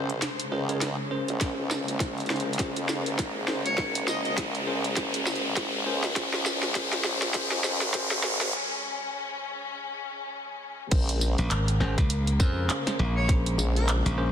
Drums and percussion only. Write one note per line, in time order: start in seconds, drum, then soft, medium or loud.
0.10 closed hi-hat medium
0.22 snare medium
0.22 closed hi-hat medium
0.40 closed hi-hat medium
0.69 closed hi-hat soft
0.81 snare medium
0.81 closed hi-hat medium
1.28 closed hi-hat soft
1.41 kick loud
1.41 snare medium
1.41 closed hi-hat medium
1.71 snare medium
1.71 tambourine medium
1.88 closed hi-hat soft
2.00 kick loud
2.00 snare medium
2.00 closed hi-hat medium
2.18 closed hi-hat soft
2.20 closed hi-hat soft
2.26 closed hi-hat soft
2.30 snare medium
2.30 closed hi-hat soft
2.36 closed hi-hat soft
2.40 closed hi-hat soft
2.53 closed hi-hat medium
2.59 kick medium
2.59 snare medium
2.59 closed hi-hat medium
2.76 closed hi-hat medium
2.89 snare medium
2.89 tambourine medium
3.06 closed hi-hat soft
3.19 kick loud
3.19 snare medium
3.19 closed hi-hat medium
3.48 snare medium
3.66 closed hi-hat soft
3.78 kick loud
3.78 snare medium
3.95 closed hi-hat medium
4.08 snare medium
4.08 tambourine medium
4.25 closed hi-hat soft
4.38 kick loud
4.38 snare medium
4.38 closed hi-hat medium
4.55 closed hi-hat soft
4.84 closed hi-hat soft
4.96 kick medium
4.96 snare medium
4.96 closed hi-hat medium
5.14 closed hi-hat medium
5.27 snare medium
5.27 tambourine medium
5.35 closed hi-hat soft
5.56 kick loud
5.56 snare medium
5.56 closed hi-hat medium
6.04 snare medium
6.04 closed hi-hat soft
6.16 kick loud
6.16 snare loud
6.16 closed hi-hat medium
6.34 snare medium
6.46 snare medium
6.46 tambourine medium
6.63 snare medium
6.63 closed hi-hat soft
6.75 kick medium
6.75 snare medium
6.75 closed hi-hat medium
6.93 snare medium
6.93 closed hi-hat soft
7.04 snare loud
7.22 snare medium
7.22 closed hi-hat medium
7.34 kick loud
7.34 snare loud
7.34 closed hi-hat medium
7.51 snare medium
7.64 snare medium
7.64 tambourine medium
7.81 snare medium
7.81 closed hi-hat soft
7.94 kick loud
7.94 snare loud
7.94 closed hi-hat medium
8.11 snare medium
8.23 snare loud
8.41 snare medium
8.41 closed hi-hat soft
10.91 kick loud
10.91 closed hi-hat medium
10.91 crash loud
11.09 closed hi-hat medium
11.21 tambourine medium
11.38 closed hi-hat soft
11.51 clap loud
11.51 closed hi-hat medium
11.68 closed hi-hat medium
11.81 snare soft
11.98 kick loud
11.98 snare soft
11.98 closed hi-hat soft
12.10 closed hi-hat medium
12.27 closed hi-hat medium
12.40 kick loud
12.40 tambourine medium
12.70 clap loud
12.70 closed hi-hat medium
12.87 snare medium
12.87 closed hi-hat medium
13.29 kick loud
13.29 closed hi-hat medium
13.46 closed hi-hat medium
13.59 tambourine medium
13.76 closed hi-hat soft
13.89 clap loud
13.89 closed hi-hat medium
14.06 closed hi-hat medium